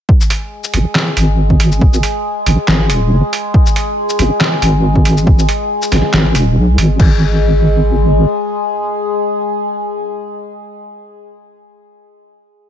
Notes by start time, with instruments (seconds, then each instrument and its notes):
0.09 synth drone G#3 G#4, kick
0.21 shaker
0.30 closed hi-hat
0.64 shaker
0.74 wobble bass G#1, closed hi-hat
0.95 snare, clap
1.17 wobble bass G#1, closed hi-hat
1.50 kick
1.60 closed hi-hat
1.72 shaker
1.81 kick
1.93 shaker
2.03 closed hi-hat
2.46 wobble bass G#1, closed hi-hat
2.68 wobble bass G#1, snare, clap
2.89 wobble bass D#1, closed hi-hat, shaker
3.11 wobble bass F#1
3.33 closed hi-hat
3.54 kick
3.66 shaker
3.76 closed hi-hat
4.09 shaker
4.19 wobble bass G#1, closed hi-hat
4.41 snare, clap
4.62 wobble bass G#1, closed hi-hat
4.96 kick
5.05 closed hi-hat
5.17 shaker
5.27 kick
5.39 shaker
5.49 closed hi-hat
5.82 shaker
5.92 wobble bass G#1, snare, closed hi-hat
6.13 wobble bass G#1, snare, clap
6.35 wobble bass D#1, closed hi-hat, shaker
6.57 wobble bass B1
6.78 wobble bass G#1, closed hi-hat
6.99 wobble bass G#1, synth drone G#3 G#4, kick, crash